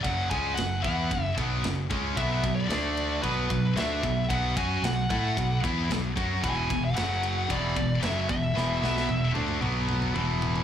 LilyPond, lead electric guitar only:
\new Staff \with { instrumentName = "Lead electric guitar" } { \time 4/4 \key b \dorian \tempo 4 = 113 fis''8 gis''8 fis''8 fis''4 r4. | e''8. d''4~ d''16 b'4 e''4 | fis''8 gis''8 fis''8 fis''4 r4. | gis''8. fis''4~ fis''16 d''4 e''8 e''8~ |
e''4. r2 r8 | }